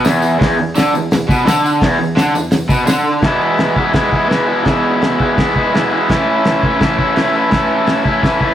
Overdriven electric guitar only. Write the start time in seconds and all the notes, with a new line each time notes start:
0.04 E2
0.39 E2
0.59 E2
0.76 D3
0.94 E2
1.13 E2
1.28 B2
1.45 D3
1.82 E2
1.99 E2
2.16 D3
2.35 E2
2.52 E2
2.69 B2
2.86 D3
3.22 E2 B2 E3 G#3 B3 E4
3.75 E3 G#3 B3 E4
3.93 E3 G#3 B3 E4
4.10 E3 G#3 B3 E4
4.28 E2 B2 E3 G#3 B3 E4
4.46 E3 G#3 B3 E4
4.64 E2 B2 E3 G#3 B3 E4
5.18 E3 G#3 B3 E4
5.36 E3 G#3 B3 E4
5.55 E3 G#3 B3 E4
5.72 E2 B2 E3 G#3 B3 E4
5.90 E3 G#3 B3 E4
6.09 A2 E3 A3 C#4 E4
6.62 A3 C#4 E4
6.79 E3 A3 C#4 E4
6.97 A3 C#4 E4
7.14 A2 E3 A3 C#4 E4
7.33 A3 C#4 E4
7.50 A2 E3 A3 C#4 E4
8.05 A3 C#4 E4
8.22 E3 A3 C#4 E4
8.38 A3 C#4 E4